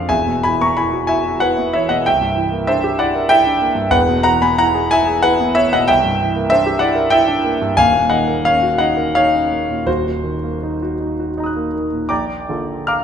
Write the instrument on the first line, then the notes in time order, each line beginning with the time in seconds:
grand piano
Already playing: A#1 F2 D3 C4 D4 F4 G#4 A#4 C5 D5 E5 F5
0.09 E1 E2 E5 G#5
0.26 B2
0.43 E3 G#5 B5
0.61 B3 A#5 C#6
0.77 E4 G#5 B5
0.93 F#4
1.07 E4 E5 G#5
1.25 F#4
1.40 E4 B4 F#5
1.58 B3
1.73 E3 C#5 E5
1.89 B2 D#5 F#5
2.06 C2 E5 G5
2.21 G2
2.35 E3
2.52 A#3
2.67 D4 C5 E5
2.84 G4
2.99 E4 D5 F#5
3.15 A#4
3.29 E4 E5 G5
3.46 D4
3.61 A#3
3.75 G2
3.91 E1 E2 B4 F#5
4.09 B2
4.23 E3 F#5 A#5
4.42 B3 G#5 B5
4.58 E4 F#5 A#5
4.74 G#4
4.91 E4 E5 G#5
5.07 G#4
5.23 E4 B4 F#5
5.40 B3
5.55 E3 C#5 E5
5.73 B2 D#5 F#5
5.88 C2 E5 G5
6.04 G2
6.21 E3
6.35 A#3
6.50 D4 C5 E5
6.66 G4
6.79 E4 D5 F#5
6.95 A#4
7.10 E4 E5 G5
7.28 D4
7.44 A#3
7.61 G2
7.77 D#1 D#2 F5 G#5
7.94 A#2
8.10 D#3 D#5 F#5
8.28 A#3
8.45 C#4 C#5 F5
8.63 F#4
8.78 D#4 D#5 F#5
8.97 A#4
9.15 D#4 C#5 F5
9.34 C#4
9.51 A#3
9.69 A#2
9.86 D#1 D#2 F#4 C5
10.05 A#2
10.23 D#3
10.44 A#3
10.63 D#4
10.82 F#4
11.01 D#4
11.20 F#4
11.37 D#4 D#5 A#5
11.44 D#6 F#6
11.56 A#3
11.74 D#3
11.92 A#2
12.09 A#1 D5 G5 A#5 D6
12.49 D3 A#3 F4 A4
12.87 F5 A#5 D6 F6